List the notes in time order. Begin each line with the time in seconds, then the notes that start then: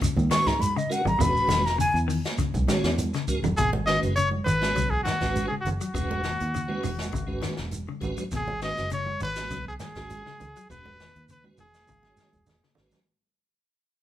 0.01 C#3, kick, snare, closed hi-hat, high conga, shekere
0.16 D#2, kick, high conga, shekere
0.30 D#3 G#3 C#4 F#4 B4 C#6, muted fingered electric bass stroke, snare, closed hi-hat, high conga, shekere
0.47 G#2 A#5, kick, snare, shekere
0.59 B5, closed hi-hat, high conga, shekere
0.76 C#3 D#5, shekere
0.90 G#3 C#4 F#4 A#4 F#5, closed hi-hat, shekere
1.05 G#1 F#3 A#5, closed hi-hat, low conga, shekere
1.19 E1 B2 G#3 C#4 F#4 B4 B5, kick, closed hi-hat, high conga, low conga, shekere
1.37 shekere
1.48 E1 D#3, snare, closed hi-hat, high conga, shekere
1.66 A#5, snare, closed hi-hat, shekere
1.78 C#3 G#5, closed hi-hat, high conga, shekere
1.94 E2, shekere
2.08 D#3, open hi-hat, shekere
2.25 snare, closed hi-hat, shekere
2.38 C#3, kick, snare, closed hi-hat, high conga, shekere
2.54 B1, kick, high conga, shekere
2.67 D#3 G#3 C#4 F#4 C#5, muted fingered electric bass stroke, snare, closed hi-hat, high conga, shekere
2.83 E2, snare, closed hi-hat, shekere
2.98 closed hi-hat, high conga, shekere
3.14 C#3, snare, closed hi-hat, shekere
3.27 G#3 C#4 F#4 A#4, kick, closed hi-hat, shekere
3.43 E1 F#3, closed hi-hat, low conga, shekere
3.57 G#1 B2 G#4, kick, closed hi-hat, high conga, shekere
3.73 high conga
3.86 D#3 G#3 C#4 F#4 B4 D#5, snare, closed hi-hat, shekere
4.02 F#1, closed hi-hat, shekere
4.15 C#3 C#5, closed hi-hat, high conga, shekere
4.31 high conga
4.45 G#1 D#3 B4, closed hi-hat, low conga, shekere
4.61 G#3 C#4 F#4 C#5, snare, closed hi-hat, high conga, shekere
4.75 B1 C#3, kick, closed hi-hat, shekere
4.90 G#4, kick
5.03 D#3 F#4, snare, closed hi-hat, high conga, shekere
5.20 G#1 G#3 C#4 F#4 B4, kick, snare, closed hi-hat, shekere
5.35 closed hi-hat, high conga, shekere
5.48 C#3 G#4
5.61 F#4
5.65 F#1, closed hi-hat, low conga, shekere
5.77 F#3 F#4, closed hi-hat, shekere
5.94 E1 B2 G#3 C#4 F#4 B4, kick, closed hi-hat, shekere
6.11 high conga
6.23 D#3, snare, closed hi-hat, shekere
6.40 D#2, closed hi-hat, shekere
6.54 C#3, closed hi-hat, high conga, shekere
6.68 G#3 C#4 F#4 B4, high conga
6.83 E1 D#3, open hi-hat, low conga, shekere
6.99 snare, high conga, shekere
7.12 G#1 C#3, kick, closed hi-hat, high conga, shekere
7.27 G#3 C#4 F#4 B4, kick
7.42 D#3, snare, closed hi-hat, high conga, shekere
7.57 E1, snare, shekere
7.71 closed hi-hat, high conga, shekere
7.88 C#3, high conga
8.00 G#1 G#3 C#4 F#4 B4, kick, closed hi-hat, low conga, shekere
8.16 F#3, closed hi-hat, shekere
8.31 G#1 B2, kick, snare, closed hi-hat, high conga, shekere
8.35 G#4
8.48 high conga
8.61 D#3 G#3 C#4 F#4 B4 D#5, snare, closed hi-hat, shekere
8.77 F#1, snare, closed hi-hat, shekere
8.90 C#3 C#5, closed hi-hat, high conga, shekere
9.06 high conga
9.20 G#1 D#3 B4, closed hi-hat, low conga, shekere
9.35 G#3 C#4 F#4 B4, snare, closed hi-hat, high conga, shekere
9.50 B1 C#3, kick, closed hi-hat, high conga, shekere
9.66 G#4, kick
9.79 D#3 G#4, snare, closed hi-hat, high conga, shekere
9.95 G#1 G#3 C#4 F#4 G#4, kick, snare, closed hi-hat, shekere
10.09 closed hi-hat, high conga, shekere
10.26 C#3, snare, high conga
10.40 C#2, closed hi-hat, low conga, shekere
10.56 F#3, closed hi-hat, shekere
10.69 E1 B2 G#3 C#4 F#4 B4, kick, closed hi-hat, high conga, shekere
10.85 high conga
11.00 D#3, snare, closed hi-hat, shekere
11.15 D#2, closed hi-hat, shekere
11.28 C#3 B4, closed hi-hat, high conga, shekere
11.44 G#3 C#4 F#4 B4, high conga
11.57 E1 D#3 G#4, open hi-hat, low conga, shekere
11.74 snare, shekere
11.87 G#1 C#3, kick, high tom, high conga, shekere
12.03 G#3 C#4 F#4 C#5, snare, high conga
12.17 D#3, snare, high conga, shekere
12.33 E1, kick, high conga, shekere
12.46 snare, low conga, shekere
12.64 C#3, snare
12.75 G#1 G#3 C#4 F#4 B4, snare, low conga, shekere
12.91 F#3, snare, low conga, shekere